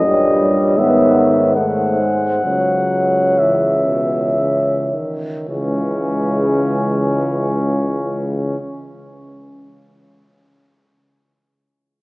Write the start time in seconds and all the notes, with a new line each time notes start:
Already playing: D#5
0.05 G2 A#2 G3 C#5
0.77 G#2 D#3 B3 E5
1.56 A3 C5 F#5
1.99 G#3
2.43 C#2 C#3 F#3 C#5
3.38 C#3 E3 E5
3.87 B2
4.38 C#3
4.93 D#3
5.48 C#2 C#3 E3 G#3 C#4